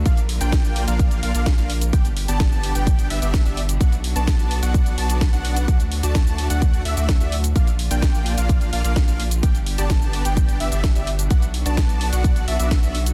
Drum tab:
HH |xxoxx-oxxxoxxxox|xxoxx-oxxxoxxxox|xxoxxxoxxxoxxxox|xxoxx-oxxxoxxxox|
SH |xx-xxx-xxx-xxx-x|xx-xxx-xxx-xxx-x|xx-xxx-xxx-xxx-x|xx-xxx-xxx-xxx-x|
SD |----o-------o---|----o-------o---|----o-------o---|----o-------o---|
BD |o---o---o---o---|o---o---o---o---|o---o---o---o---|o---o---o---o---|

HH |xxoxx-oxxxoxxxox|xxoxx-oxxxoxxxox|xxoxxxoxxxoxxxox|
SH |xx-xxx-xxx-xxx-x|xx-xxx-xxx-xxx-x|xx-xxx-xxx-xxx-x|
SD |----o-------o---|----o-------o---|----o-------o---|
BD |o---o---o---o---|o---o---o---o---|o---o---o---o---|